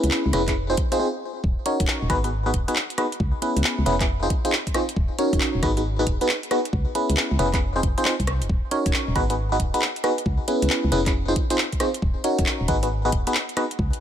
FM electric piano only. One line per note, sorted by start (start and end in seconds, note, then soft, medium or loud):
0.00 0.32 B3 medium
0.00 0.32 C#4 medium
0.00 0.32 E4 medium
0.00 0.32 G#4 medium
0.00 0.32 B4 medium
0.33 0.42 B3 loud
0.33 0.42 C#4 medium
0.33 0.42 E4 medium
0.33 0.42 G#4 medium
0.33 0.42 B4 loud
0.48 0.52 B3 medium
0.48 0.52 C#4 medium
0.48 0.52 E4 medium
0.48 0.52 G#4 medium
0.48 0.52 B4 medium
0.70 0.74 C4 medium
0.70 0.74 D#4 medium
0.70 0.74 F4 medium
0.70 0.74 G#4 medium
0.70 0.74 C5 loud
0.92 0.98 C4 medium
0.92 0.98 D#4 medium
0.92 0.98 F4 medium
0.92 0.98 G#4 medium
0.92 0.98 C5 loud
0.99 1.08 C4 medium
0.99 1.08 D#4 medium
0.99 1.08 F4 medium
0.99 1.08 G#4 medium
0.99 1.08 C5 medium
1.66 2.08 C#4 medium
1.66 2.08 D#4 medium
1.66 2.08 F#4 medium
1.66 2.08 A#4 medium
1.66 2.08 C#5 medium
2.10 2.18 B3 loud
2.10 2.18 D#4 medium
2.10 2.18 F#4 medium
2.10 2.18 G#4 medium
2.10 2.18 B4 loud
2.24 2.29 B3 medium
2.24 2.29 D#4 medium
2.24 2.29 F#4 medium
2.24 2.29 G#4 medium
2.24 2.29 B4 medium
2.46 2.51 B3 medium
2.46 2.51 D#4 medium
2.46 2.51 F#4 medium
2.46 2.51 G#4 medium
2.46 2.51 B4 loud
2.68 2.75 B3 medium
2.68 2.75 D#4 medium
2.68 2.75 F#4 medium
2.68 2.75 G#4 medium
2.68 2.75 B4 loud
2.98 3.06 B3 medium
2.98 3.06 D#4 medium
2.98 3.06 F#4 medium
2.98 3.06 G#4 medium
2.98 3.06 B4 medium
3.42 3.84 B3 medium
3.42 3.84 C#4 medium
3.42 3.84 E4 medium
3.42 3.84 G#4 medium
3.42 3.84 B4 medium
3.86 3.94 B3 loud
3.86 3.94 C#4 medium
3.86 3.94 E4 medium
3.86 3.94 G#4 medium
3.86 3.94 B4 loud
4.00 4.05 B3 medium
4.00 4.05 C#4 medium
4.00 4.05 E4 medium
4.00 4.05 G#4 medium
4.00 4.05 B4 medium
4.22 4.27 C4 medium
4.22 4.27 D#4 medium
4.22 4.27 F4 medium
4.22 4.27 G#4 medium
4.22 4.27 C5 loud
4.45 4.52 C4 medium
4.45 4.52 D#4 medium
4.45 4.52 F4 medium
4.45 4.52 G#4 medium
4.45 4.52 C5 medium
4.74 4.83 C4 medium
4.74 4.83 D#4 medium
4.74 4.83 F4 medium
4.74 4.83 G#4 medium
4.74 4.83 C5 medium
5.18 5.61 C#4 medium
5.18 5.61 D#4 medium
5.18 5.61 F#4 medium
5.18 5.61 A#4 medium
5.18 5.61 C#5 medium
5.63 5.71 B3 loud
5.63 5.71 D#4 medium
5.63 5.71 F#4 medium
5.63 5.71 G#4 medium
5.63 5.71 B4 loud
5.77 5.82 B3 medium
5.77 5.82 D#4 medium
5.77 5.82 F#4 medium
5.77 5.82 G#4 medium
5.77 5.82 B4 medium
5.99 6.04 B3 medium
5.99 6.04 D#4 medium
5.99 6.04 F#4 medium
5.99 6.04 G#4 medium
5.99 6.04 B4 loud
6.21 6.28 B3 medium
6.21 6.28 D#4 medium
6.21 6.28 F#4 medium
6.21 6.28 G#4 medium
6.21 6.28 B4 loud
6.51 6.59 B3 medium
6.51 6.59 D#4 medium
6.51 6.59 F#4 medium
6.51 6.59 G#4 medium
6.51 6.59 B4 medium
6.95 7.37 B3 medium
6.95 7.37 C#4 medium
6.95 7.37 E4 medium
6.95 7.37 G#4 medium
6.95 7.37 B4 medium
7.39 7.47 B3 medium
7.39 7.47 C#4 medium
7.39 7.47 E4 medium
7.39 7.47 G#4 medium
7.39 7.47 B4 loud
7.53 7.58 B3 medium
7.53 7.58 C#4 medium
7.53 7.58 E4 medium
7.53 7.58 G#4 medium
7.53 7.58 B4 medium
7.76 7.80 C4 medium
7.76 7.80 D#4 medium
7.76 7.80 F4 medium
7.76 7.80 G#4 medium
7.76 7.80 C5 loud
7.98 8.04 C4 medium
7.98 8.04 D#4 medium
7.98 8.04 F4 medium
7.98 8.04 G#4 medium
7.98 8.04 C5 loud
8.05 8.14 C4 medium
8.05 8.14 D#4 medium
8.05 8.14 F4 medium
8.05 8.14 G#4 medium
8.05 8.14 C5 medium
8.71 9.14 C#4 medium
8.71 9.14 D#4 medium
8.71 9.14 F#4 medium
8.71 9.14 A#4 medium
8.71 9.14 C#5 medium
9.15 9.24 B3 loud
9.15 9.24 D#4 medium
9.15 9.24 F#4 medium
9.15 9.24 G#4 medium
9.15 9.24 B4 loud
9.30 9.34 B3 medium
9.30 9.34 D#4 medium
9.30 9.34 F#4 medium
9.30 9.34 G#4 medium
9.30 9.34 B4 medium
9.52 9.57 B3 medium
9.52 9.56 D#4 medium
9.52 9.57 F#4 medium
9.52 9.57 G#4 medium
9.52 9.56 B4 loud
9.74 9.81 B3 medium
9.74 9.81 D#4 medium
9.74 9.81 F#4 medium
9.74 9.81 G#4 medium
9.74 9.81 B4 loud
10.04 10.12 B3 medium
10.04 10.12 D#4 medium
10.04 10.12 F#4 medium
10.04 10.12 G#4 medium
10.04 10.12 B4 medium
10.48 10.90 B3 medium
10.48 10.90 C#4 medium
10.48 10.90 E4 medium
10.48 10.90 G#4 medium
10.48 10.90 B4 medium
10.92 11.00 B3 loud
10.92 11.00 C#4 medium
10.92 11.00 E4 medium
10.92 11.00 G#4 medium
10.92 11.00 B4 loud
11.06 11.11 B3 medium
11.06 11.11 C#4 medium
11.06 11.11 E4 medium
11.06 11.11 G#4 medium
11.06 11.11 B4 medium
11.28 11.33 C4 medium
11.28 11.33 D#4 medium
11.28 11.33 F4 medium
11.28 11.33 G#4 medium
11.28 11.33 C5 loud
11.50 11.58 C4 medium
11.50 11.58 D#4 medium
11.50 11.58 F4 medium
11.50 11.58 G#4 medium
11.50 11.58 C5 loud
11.80 11.89 C4 medium
11.80 11.89 D#4 medium
11.80 11.89 F4 medium
11.80 11.89 G#4 medium
11.80 11.89 C5 medium
12.24 12.67 C#4 medium
12.24 12.67 D#4 medium
12.24 12.67 F#4 medium
12.24 12.67 A#4 medium
12.24 12.67 C#5 medium
12.68 12.77 B3 loud
12.68 12.77 D#4 medium
12.68 12.77 F#4 medium
12.68 12.77 G#4 medium
12.68 12.77 B4 loud
12.83 12.87 B3 medium
12.83 12.87 D#4 medium
12.83 12.87 F#4 medium
12.83 12.87 G#4 medium
12.83 12.87 B4 medium
13.05 13.09 B3 medium
13.05 13.09 D#4 medium
13.05 13.09 F#4 medium
13.05 13.09 G#4 medium
13.05 13.09 B4 loud
13.27 13.34 B3 medium
13.27 13.34 D#4 medium
13.27 13.34 F#4 medium
13.27 13.34 G#4 medium
13.27 13.34 B4 loud
13.57 13.65 B3 medium
13.57 13.65 D#4 medium
13.57 13.65 F#4 medium
13.57 13.65 G#4 medium
13.57 13.65 B4 medium